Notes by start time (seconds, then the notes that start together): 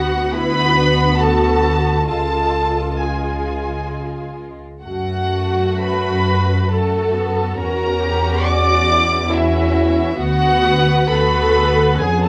Already playing: D2 B3 F#4 F#5
0.32 B3 E4 F#4 B4 B5
0.76 D4
1.18 F#4 A4 A5
2.07 C#2 G#3 F4 A4 A5
2.99 G#3 F4 G#4 G#5
4.83 F#2 A3 F#4 F#5
5.82 F#4 B4 B5
6.72 A3 F#4 A4 A5
7.13 B3
7.56 E2 C#4 F#4 A#4 A#5
7.60 F#4
8.04 G4
8.46 F#4 D5 D6
8.91 E4
9.30 C#4 E4 F#4
9.34 E5
10.16 D2 B3 F#4 F#5
10.65 B4
11.08 D2 B3 F#4 A4 B4 B5
11.99 F2 B3 C#4 G#4 G#5
12.24 A4 A5